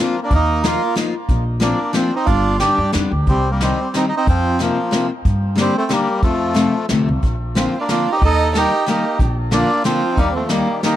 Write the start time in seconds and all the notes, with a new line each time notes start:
Already playing: A#3
0.00 F3 A#3 C4 D4 F4
0.23 A#3 D4
0.30 D#2 A#3, kick, closed hi-hat
0.35 D#4
0.64 F3 A#3 D#4 F4, snare, closed hi-hat
0.96 F3 A#3 D#4 F4, snare, closed hi-hat
1.29 A#1, kick, closed hi-hat
1.60 F3 A#3 C4 D4, snare, closed hi-hat
1.93 F3 A#3 C4 D4, snare, closed hi-hat
2.16 C4 D#4
2.25 G1 D4 F4, kick, closed hi-hat
2.60 D3 G3 B3 D4 G4, snare, closed hi-hat
2.78 G2
2.92 F2 D3 G3 B3 D4, snare, closed hi-hat
3.11 D2
3.26 C2 G3 C4, kick, closed hi-hat
3.51 G3 A#3
3.61 D#3 G3 C4 D#4, snare, closed hi-hat
3.94 D#3 G3 C4 D#4, snare, closed hi-hat
4.09 D#4
4.17 C4 D#4
4.27 F2 F3 C4, kick, closed hi-hat
4.59 C3 F3 A#3 C4, snare, closed hi-hat
4.91 C3 F3 A#3 C4, snare, closed hi-hat
5.25 G2, kick, closed hi-hat
5.56 D3 G3 A#3 D4, snare, closed hi-hat
5.60 G3 C4
5.77 A3 C4
5.89 D3 G3 A#3 D4, snare, closed hi-hat
6.22 F2 F3 A3, kick, closed hi-hat
6.54 C3 F3 A3 C4, snare, closed hi-hat
6.89 D2 C3 F3 A3 C4, snare, closed hi-hat
7.09 C2
7.22 A#1, kick, closed hi-hat
7.55 D3 F3 A#3 C4 F4, snare, closed hi-hat
7.78 A#3 D4 F4
7.89 D3 F3 A#3 C4 D4 F4 A#4, snare, closed hi-hat
8.10 D#4 G4 A#4
8.20 D#2 D#5, kick, closed hi-hat
8.25 D#4 A4
8.54 D#3 G3 A#3 D#4 G4 A#4, snare, closed hi-hat
8.86 D#3 G3 A#3 D#4 G4, snare, closed hi-hat
9.19 A#1, kick, closed hi-hat
9.51 D3 F3 A#3 D4 F4, snare, closed hi-hat
9.82 D3 F3 A#3 C4 D4 F4, snare, closed hi-hat
10.16 D#2 G3 A#3 D#4, kick, closed hi-hat
10.33 F3 A3 C4
10.49 D#3 G3 A#3 D#4, snare, closed hi-hat
10.83 D#3 G3 A#3 D#4 G4, snare, closed hi-hat